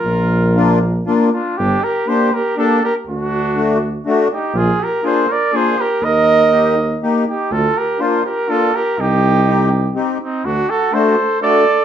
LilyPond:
<<
  \new Staff \with { instrumentName = "Flugelhorn" } { \time 3/4 \key bes \major \tempo 4 = 122 bes'2 r8 f'8 | \key g \minor g'8 bes'8 c''8 bes'8 a'8 bes'8 | fis'2 r8 g'8 | aes'8 bes'8 c''8 d''8 c''8 bes'8 |
ees''2 r8 g'8 | a'8 bes'8 c''8 bes'8 a'8 bes'8 | g'2 r8 ees'8 | fis'8 a'8 c''4 d''4 | }
  \new Staff \with { instrumentName = "Trumpet" } { \time 3/4 \key bes \major f'2 r8 d'8 | \key g \minor d'8 g'8 g'8 g'8 d'8 g'8 | d'2 r8 ees'8 | f'8 g'8 aes'8 bes'8 aes'8 g'8 |
bes'2 r8 ees'8 | f'8 g'8 f'8 g'8 f'8 g'8 | ees'2 r8 c'8 | d'8 fis'8 a'4 a'4 | }
  \new Staff \with { instrumentName = "Accordion" } { \time 3/4 \key bes \major r4 <bes d' f'>8 r8 <bes d' f'>8 r8 | \key g \minor r4 <bes d' g'>8 r8 <bes d' g'>8 r8 | r4 <a d' fis'>8 r8 <a d' fis'>8 r8 | r4 <bes d' f'>8 r8 <bes d' f'>8 r8 |
r4 <bes ees' g'>8 r8 <bes ees' g'>8 r8 | r4 <bes d' f'>8 r8 <bes d' f'>8 r8 | r4 <c' ees' g'>8 r8 <c' ees' g'>8 r8 | r4 <a d' fis'>8 r8 <a d' fis'>8 r8 | }
  \new Staff \with { instrumentName = "Tuba" } { \clef bass \time 3/4 \key bes \major bes,,2. | \key g \minor g,,8 r2 r8 | d,2. | bes,,8 r2 r8 |
ees,2. | d,8 r2 r8 | c,2. | d,8 r2 r8 | }
>>